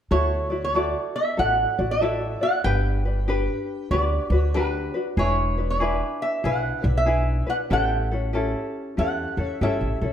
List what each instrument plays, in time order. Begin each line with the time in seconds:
0.11 upright bass D2, ukulele E4 F#4 A4, resonator guitar played with a steel bar C#5
0.50 ukulele E4 F#4 D5
0.65 resonator guitar played with a steel bar C#5
0.74 ukulele E4 F#4 A4 D5, resonator guitar played with a steel bar D5
1.16 resonator guitar played with a steel bar E5
1.37 upright bass A1, ukulele E4 F#4 A4 D5, resonator guitar played with a steel bar F#5
1.78 upright bass A1, ukulele E4 F#4 D5
1.91 resonator guitar played with a steel bar E5
2.01 ukulele E4 F#4 A4 D5
2.41 ukulele E4 F#4 D5, resonator guitar played with a steel bar F#5
2.64 upright bass G1, ukulele D4 G4 B4, resonator guitar played with a steel bar G5
3.05 ukulele D4 B4
3.28 ukulele D4 G4 B4
3.91 upright bass D2, ukulele D4 F#4 G4 B4, resonator guitar played with a steel bar D5
4.30 upright bass D2, ukulele F#4 B4
4.34 ukulele D4, resonator guitar played with a steel bar C#5
4.54 ukulele D4 F#4 G4 B4, resonator guitar played with a steel bar B4
4.94 ukulele D4 F#4 B4
5.17 upright bass E1, ukulele D4 E4 G#4 B4, resonator guitar played with a steel bar C#5
5.58 ukulele D4 E4 B4
5.70 resonator guitar played with a steel bar D5
5.80 ukulele D4 E4 G#4 B4
6.22 resonator guitar played with a steel bar E5
6.44 upright bass B1, ukulele D4 E4 G#4 B4, resonator guitar played with a steel bar F#5
6.83 upright bass B1, ukulele D4 E4 B4
6.97 resonator guitar played with a steel bar E5
7.06 ukulele D4 E4 G#4 B4
7.47 ukulele D4 E4 B4, resonator guitar played with a steel bar F#5
7.70 upright bass A1, ukulele C#4 E4 G4 A4, resonator guitar played with a steel bar G5
8.11 ukulele C#4 E4 A4
8.33 ukulele C#4 E4 G4 A4
8.97 upright bass E2, ukulele C#4 E4 G4 A4, resonator guitar played with a steel bar F#5
9.37 upright bass E2, ukulele C#4 E4 A4
9.48 resonator guitar played with a steel bar E5
9.61 upright bass G1, ukulele C#4 E4 G4 A4, resonator guitar played with a steel bar E5
9.81 upright bass A1
10.01 upright bass B1, ukulele C#4 E4 A4